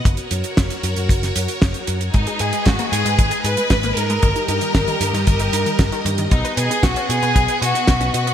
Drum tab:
HH |xxxxxxxxxxxxxxxx|xxxxxxxxxxxxxxxx|xxxxxxxxxxxxxxxx|xxxxxxxxxxxxxxxx|
SD |----o----o--o---|----o-------o---|----o-------o---|----o-------o---|
BD |o---o---o---o---|o---o---o---o---|o---o---o---o---|o---o---o---o---|